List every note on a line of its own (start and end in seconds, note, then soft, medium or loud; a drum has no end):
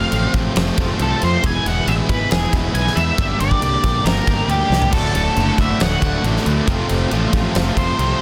0.00 0.10 F2 medium
0.00 0.11 C3 loud
0.00 0.11 F3 medium
0.00 0.12 A3 medium
0.00 0.12 C4 medium
0.00 0.13 F4 medium
0.00 1.40 A4 medium
0.00 1.42 C5 medium
0.00 0.32 F5 loud
0.00 1.42 F5 medium
0.00 1.42 C6 medium
0.11 0.26 A1 medium
0.11 0.56 F2 medium
0.11 0.56 C3 medium
0.11 0.35 F3 medium
0.11 0.34 A3 medium
0.11 0.33 C4 loud
0.11 0.32 F4 loud
0.11 ride loud
0.33 0.47 A1 medium
0.33 0.78 F3 medium
0.33 0.78 A3 medium
0.33 0.77 C4 medium
0.33 0.76 F4 medium
0.33 kick loud
0.33 ride medium
0.56 0.70 F1 loud
0.56 snare loud
0.56 ride loud
0.77 0.91 F1 loud
0.77 0.97 F3 medium
0.77 0.98 A3 medium
0.77 0.99 C4 medium
0.77 1.00 F4 medium
0.77 kick loud
0.77 ride medium
0.99 1.13 C2 medium
0.99 1.42 F3 medium
0.99 1.42 A3 medium
0.99 1.43 C4 medium
0.99 1.43 F4 medium
0.99 1.24 A4 medium
0.99 ride loud
1.21 1.36 F2 medium
1.21 1.43 F3 medium
1.21 1.43 A3 medium
1.21 1.43 C4 medium
1.21 1.42 F4 medium
1.21 1.46 C5 medium
1.21 ride medium
1.42 1.57 E1 loud
1.42 1.85 E2 medium
1.42 1.86 B2 medium
1.42 1.67 E3 loud
1.42 1.65 G#3 loud
1.42 1.64 B3 loud
1.42 1.64 E4 loud
1.42 3.18 G#4 medium
1.42 3.18 B4 medium
1.42 3.17 E5 medium
1.42 3.17 B5 medium
1.42 kick loud
1.42 ride loud
1.46 1.67 G#5 loud
1.65 1.79 E1 medium
1.65 1.87 E3 medium
1.65 1.87 G#3 medium
1.65 1.88 B3 medium
1.65 1.88 E4 medium
1.65 1.89 F#5 loud
1.65 ride medium
1.87 2.01 A1 medium
1.87 2.31 E2 medium
1.87 2.31 B2 medium
1.87 2.10 E3 loud
1.87 2.10 G#3 loud
1.87 2.09 B3 loud
1.87 2.08 E4 loud
1.87 1.94 E5 medium
1.87 ride medium
2.09 2.23 G#1 medium
2.09 2.54 E3 medium
2.09 2.54 G#3 medium
2.09 2.53 B3 medium
2.09 2.52 E4 medium
2.09 2.31 B4 medium
2.09 kick medium
2.09 ride medium
2.31 2.45 E1 loud
2.31 2.52 G#4 medium
2.31 snare loud
2.31 ride loud
2.53 2.66 E1 loud
2.53 2.73 E3 medium
2.53 2.74 G#3 medium
2.53 2.76 B3 medium
2.53 2.76 E4 medium
2.53 kick medium
2.53 ride medium
2.74 2.88 B1 medium
2.74 3.17 E3 medium
2.74 3.18 G#3 medium
2.74 3.18 B3 medium
2.74 3.19 E4 medium
2.74 2.97 G#5 loud
2.74 ride loud
2.87 snare soft
2.96 3.10 E2 medium
2.96 3.18 E3 medium
2.96 3.18 G#3 medium
2.96 3.17 B3 medium
2.96 3.17 E4 medium
2.96 3.40 E5 loud
2.96 ride medium
3.17 3.32 G1 medium
3.17 3.61 G2 medium
3.17 3.61 D3 loud
3.17 3.41 G3 loud
3.17 3.40 A#3 medium
3.17 3.40 D4 loud
3.17 3.39 G4 loud
3.17 4.91 A#4 medium
3.17 4.91 D5 medium
3.17 4.91 G5 medium
3.17 6.64 D6 medium
3.17 kick loud
3.17 ride medium
3.40 3.54 G1 medium
3.40 3.61 G3 medium
3.40 3.62 A#3 medium
3.40 3.63 D4 medium
3.40 3.63 G4 medium
3.40 4.08 D5 loud
3.40 ride medium
3.51 kick medium
3.62 3.75 C2 medium
3.62 4.06 G2 medium
3.62 4.06 D3 medium
3.62 3.85 G3 loud
3.62 3.84 A#3 medium
3.62 3.84 D4 medium
3.62 3.82 G4 loud
3.62 ride medium
3.83 3.97 A#1 medium
3.83 4.29 G3 medium
3.83 4.28 A#3 medium
3.83 4.27 D4 medium
3.83 4.26 G4 medium
3.83 kick medium
3.83 ride medium
4.05 4.19 G1 medium
4.05 4.50 A#4 loud
4.05 snare loud
4.05 ride medium
4.27 4.41 G1 loud
4.27 4.48 G3 medium
4.27 4.48 A#3 medium
4.27 4.49 D4 medium
4.27 4.50 G4 medium
4.27 kick medium
4.27 ride medium
4.48 4.62 D2 medium
4.48 4.92 G3 medium
4.48 4.92 A#3 medium
4.48 4.92 D4 medium
4.48 4.93 G4 medium
4.48 ride loud
4.70 4.84 C2 medium
4.70 4.93 A#3 medium
4.70 4.92 D4 medium
4.70 4.91 G4 medium
4.70 snare medium
4.74 4.93 G3 medium
4.82 floor tom medium
4.92 5.07 D1 medium
4.92 5.35 D2 loud
4.92 5.36 A2 medium
4.92 5.16 D3 medium
4.92 5.16 A3 medium
4.92 5.13 F#4 loud
4.92 8.22 A4 medium
4.92 5.55 A4 medium
4.92 6.66 D5 medium
4.92 6.66 F#5 medium
4.92 kick loud
4.92 ride loud
4.92 crash loud
5.14 5.28 D1 medium
5.14 5.36 D3 medium
5.14 5.38 A3 medium
5.14 5.38 F#4 medium
5.14 ride medium
5.36 5.50 F#1 medium
5.36 5.80 D2 medium
5.36 5.81 A2 loud
5.36 5.59 D3 loud
5.36 5.59 A3 loud
5.36 5.56 F#4 loud
5.36 ride medium
5.57 5.72 F#1 medium
5.57 5.78 D2 medium
5.57 5.79 A2 loud
5.57 6.03 D3 medium
5.57 6.02 A3 medium
5.57 6.00 F#4 medium
5.57 5.82 E5 medium
5.57 kick medium
5.57 ride medium
5.79 5.94 D1 medium
5.79 6.22 D2 medium
5.79 6.23 A2 loud
5.79 6.23 D3 medium
5.79 6.22 F#5 medium
5.79 snare loud
5.79 ride loud
6.02 6.16 D1 loud
6.02 6.23 D3 medium
6.02 6.24 A3 medium
6.02 6.25 F#4 medium
6.02 kick medium
6.02 ride medium
6.23 6.37 A1 medium
6.23 6.43 D2 loud
6.23 6.66 A2 medium
6.23 6.67 D3 medium
6.23 6.67 A3 medium
6.23 6.67 F#4 medium
6.23 ride medium
6.36 snare soft
6.45 6.66 D2 medium
6.45 6.60 D2 medium
6.45 6.66 A2 medium
6.45 6.66 D3 loud
6.45 6.67 D3 medium
6.45 6.67 A3 medium
6.45 6.66 F#4 medium
6.45 ride medium
6.66 6.81 F1 medium
6.66 7.09 F2 loud
6.66 7.10 C3 loud
6.66 6.90 F3 medium
6.66 6.90 A3 loud
6.66 6.89 C4 loud
6.66 8.22 C5 medium
6.66 8.22 F5 medium
6.66 8.22 C6 medium
6.66 kick loud
6.66 ride loud
6.70 6.88 F4 loud
6.89 7.03 F1 medium
6.89 7.11 F3 medium
6.89 7.12 A3 medium
6.89 7.12 C4 medium
6.89 7.12 F4 medium
6.89 ride medium
7.11 7.25 A1 medium
7.11 7.55 F2 medium
7.11 7.55 C3 medium
7.11 7.34 F3 medium
7.11 7.33 A3 loud
7.11 7.32 C4 medium
7.11 7.31 F4 loud
7.11 ride loud
7.32 7.46 A1 medium
7.32 7.52 F2 loud
7.32 7.53 C3 loud
7.32 7.78 F3 medium
7.32 7.77 A3 medium
7.32 7.76 C4 medium
7.32 7.75 F4 medium
7.32 kick medium
7.32 ride medium
7.54 7.69 F1 loud
7.54 7.96 F2 loud
7.54 7.97 C3 loud
7.54 7.97 F3 loud
7.54 snare loud
7.54 ride loud
7.76 7.90 F1 loud
7.76 7.97 F3 medium
7.76 7.98 A3 medium
7.76 7.99 C4 medium
7.76 8.00 F4 medium
7.76 8.22 C5 loud
7.76 kick medium
7.76 ride medium
7.97 8.12 C2 medium
7.97 8.18 F2 loud
7.97 8.18 C3 loud
7.97 8.22 F3 medium
7.97 8.22 A3 medium
7.97 8.22 C4 medium
7.97 8.22 F4 medium
7.97 ride loud